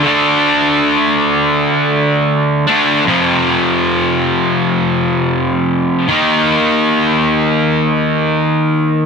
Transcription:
0.04 2.66 D3 medium
0.04 2.67 A3 loud
0.04 2.66 D4 loud
2.67 3.06 D3 medium
2.67 3.05 A3 medium
2.67 3.04 D4 medium
3.06 6.06 F2 medium
3.06 6.08 C3 medium
3.06 6.08 F3 loud
6.08 9.06 D#3 medium
6.08 9.06 A#3 loud
6.12 9.06 D#4 loud

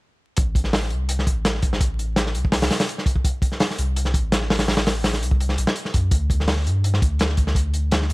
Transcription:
0.37 0.93 A1 medium
0.37 kick loud
0.37 closed hi-hat medium
0.55 kick medium
0.55 closed hi-hat medium
0.64 snare soft
0.73 snare loud
0.73 open hi-hat medium
0.83 snare soft
0.90 1.26 C2 medium
0.90 closed hi-hat medium
1.09 closed hi-hat medium
1.19 snare soft
1.27 1.61 A1 medium
1.27 kick medium
1.27 closed hi-hat medium
1.45 snare loud
1.45 closed hi-hat medium
1.55 snare soft
1.62 2.36 A1 medium
1.62 kick loud
1.62 closed hi-hat medium
1.73 snare medium
1.81 kick loud
1.81 closed hi-hat medium
1.99 closed hi-hat medium
2.16 snare loud
2.16 closed hi-hat medium
2.26 snare soft
2.35 2.69 C2 medium
2.35 closed hi-hat medium
2.45 kick medium
2.52 snare loud
2.52 open hi-hat medium
2.61 snare loud
2.61 open hi-hat medium
2.70 snare loud
2.70 open hi-hat medium
2.80 snare medium
2.80 open hi-hat medium
2.89 closed hi-hat medium
2.98 snare soft
3.06 kick medium
3.06 closed hi-hat medium
3.16 kick medium
3.24 kick loud
3.24 closed hi-hat medium
3.42 kick medium
3.42 closed hi-hat medium
3.52 snare soft
3.60 snare loud
3.60 open hi-hat medium
3.71 snare soft
3.78 4.13 C2 medium
3.78 closed hi-hat medium
3.96 closed hi-hat medium
4.05 snare soft
4.14 5.24 A1 medium
4.14 kick medium
4.14 closed hi-hat medium
4.32 snare loud
4.32 closed hi-hat medium
4.41 snare soft
4.50 snare loud
4.50 open hi-hat medium
4.59 snare medium
4.59 open hi-hat medium
4.68 snare medium
4.68 open hi-hat medium
4.77 snare loud
4.77 open hi-hat medium
4.86 snare loud
4.86 open hi-hat medium
5.04 snare medium
5.04 open hi-hat medium
5.13 snare soft
5.22 5.57 C2 medium
5.22 closed hi-hat medium
5.31 kick loud
5.41 closed hi-hat medium
5.49 snare soft
5.58 5.66 B1 medium
5.58 closed hi-hat medium
5.67 snare loud
5.76 closed hi-hat medium
5.85 snare soft
5.94 6.10 F#2 medium
5.94 kick medium
5.94 closed hi-hat medium
6.11 6.67 D2 loud
6.11 kick loud
6.11 closed hi-hat medium
6.30 kick loud
6.30 closed hi-hat medium
6.40 snare soft
6.48 snare loud
6.48 open hi-hat medium
6.56 snare soft
6.66 7.00 G2 loud
6.66 closed hi-hat medium
6.84 closed hi-hat medium
6.94 snare soft
7.02 7.37 D2 medium
7.02 kick loud
7.02 closed hi-hat medium
7.19 snare loud
7.19 closed hi-hat medium
7.29 snare soft
7.37 8.11 D2 medium
7.37 kick medium
7.37 closed hi-hat medium
7.47 snare soft
7.55 kick loud
7.55 closed hi-hat medium
7.74 closed hi-hat medium
7.91 snare loud
7.91 closed hi-hat medium
8.02 snare soft
8.10 8.13 G2 medium
8.10 closed hi-hat medium

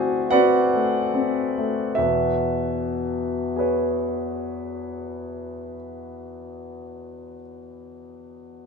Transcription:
0.00 1.92 D2 medium
0.00 0.34 C4 medium
0.00 1.99 E4 medium
0.00 0.32 F#4 medium
0.00 0.28 G#4 medium
0.00 0.28 C5 medium
0.00 0.28 E5 medium
0.00 0.31 G#5 loud
0.30 0.97 C4 soft
0.30 1.91 F#4 medium
0.30 1.90 B4 medium
0.30 1.91 D5 medium
0.30 1.94 F#5 medium
0.74 1.39 A3 soft
1.14 1.80 C4 soft
1.57 1.96 A3 soft
1.95 5.77 E2 soft
1.95 5.76 B2 soft
1.95 5.74 E5 medium
3.56 7.35 G#4 soft
3.56 7.38 B4 soft
3.60 7.39 C#5 soft

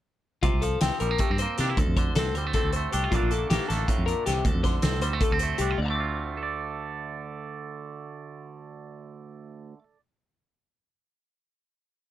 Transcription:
0.43 0.51 C2 medium
0.43 0.63 C3 medium
0.43 0.63 F4 medium
0.43 kick loud
0.43 closed hi-hat medium
0.54 0.76 C2 medium
0.62 1.98 F3 soft
0.62 0.81 A4 medium
0.62 closed hi-hat medium
0.81 0.90 C2 medium
0.81 1.20 C4 medium
0.81 1.00 G4 medium
0.81 snare loud
0.81 closed hi-hat medium
1.00 1.16 A#1 medium
1.00 1.11 G3 soft
1.00 1.20 A#4 medium
1.00 closed hi-hat medium
1.11 1.40 A#3 soft
1.18 1.31 A3 medium
1.18 1.39 G4 medium
1.18 kick medium
1.18 closed hi-hat medium
1.30 1.45 G2 medium
1.30 1.78 C4 soft
1.38 1.77 A#3 soft
1.38 1.58 C5 medium
1.38 closed hi-hat medium
1.58 1.74 C3 medium
1.58 1.69 D4 soft
1.58 1.77 G4 medium
1.58 snare soft
1.58 closed hi-hat medium
1.69 1.79 E4 soft
1.77 1.85 D2 medium
1.77 3.12 D2 medium
1.77 1.97 A4 medium
1.77 kick medium
1.77 closed hi-hat medium
1.87 2.10 F2 medium
1.97 3.12 D3 soft
1.97 2.15 C5 medium
1.97 kick medium
1.97 closed hi-hat medium
2.15 2.35 C2 medium
2.15 2.55 C4 medium
2.15 2.35 A4 medium
2.15 snare loud
2.15 closed hi-hat medium
2.35 2.58 D2 medium
2.35 2.47 G3 soft
2.35 2.54 C5 medium
2.35 closed hi-hat soft
2.47 2.75 A3 soft
2.53 3.10 C4 soft
2.53 2.73 A4 medium
2.53 kick medium
2.53 snare soft
2.53 closed hi-hat medium
2.64 2.86 D2 medium
2.73 3.14 A3 medium
2.73 2.92 C5 medium
2.73 closed hi-hat medium
2.92 3.08 C2 medium
2.92 3.04 D4 soft
2.92 3.12 G4 medium
2.92 closed hi-hat soft
3.04 3.13 F4 soft
3.11 3.19 A#1 medium
3.11 3.31 A#2 medium
3.11 3.32 D3 medium
3.11 3.71 A3 soft
3.11 3.52 A#3 medium
3.11 3.31 F4 medium
3.11 kick medium
3.11 closed hi-hat medium
3.16 5.60 D4 medium
3.22 3.44 A#1 medium
3.31 4.62 D3 soft
3.31 3.49 A4 medium
3.31 closed hi-hat medium
3.50 3.58 A#1 medium
3.50 4.45 A#3 medium
3.50 3.68 G4 medium
3.50 snare loud
3.50 closed hi-hat medium
3.69 3.85 A1 medium
3.69 5.02 A3 soft
3.69 3.87 A4 medium
3.69 snare soft
3.69 closed hi-hat medium
3.87 4.07 A2 medium
3.87 4.06 F4 medium
3.87 kick medium
3.87 closed hi-hat medium
3.98 4.13 F2 medium
4.06 4.27 A#2 medium
4.06 4.26 A#4 medium
4.06 closed hi-hat medium
4.26 4.42 C2 medium
4.26 4.46 C3 medium
4.26 4.45 G4 medium
4.26 snare soft
4.26 closed hi-hat medium
4.45 4.53 D2 medium
4.45 5.79 D2 medium
4.45 4.63 A4 medium
4.45 kick medium
4.45 closed hi-hat medium
4.55 4.77 F2 medium
4.63 5.84 D3 soft
4.63 4.83 C5 medium
4.63 kick medium
4.63 snare soft
4.63 closed hi-hat medium
4.82 5.02 C2 medium
4.82 5.21 C4 medium
4.82 5.02 A4 medium
4.82 snare loud
4.82 closed hi-hat medium
5.02 5.24 D2 medium
5.02 5.13 G3 medium
5.02 5.21 C5 medium
5.02 closed hi-hat medium
5.13 5.22 A3 soft
5.21 5.32 A3 medium
5.21 5.40 A4 medium
5.21 kick medium
5.21 closed hi-hat medium
5.31 5.53 D2 medium
5.31 5.79 C4 soft
5.39 5.78 A3 medium
5.39 5.59 C5 medium
5.39 closed hi-hat medium
5.58 5.74 C2 medium
5.58 5.71 D4 soft
5.58 5.78 G4 medium
5.58 closed hi-hat medium
5.71 5.80 F4 soft
5.78 9.67 D2 medium
5.78 9.73 D2 medium
5.78 5.82 D5 medium
5.82 9.78 D3 soft
5.82 5.86 F5 medium
5.82 5.89 A5 medium
5.90 9.83 A3 medium
5.90 9.79 D6 medium
5.95 6.37 C4 soft
6.00 6.42 F4 soft
6.37 9.97 A4 medium
6.43 10.00 D5 medium

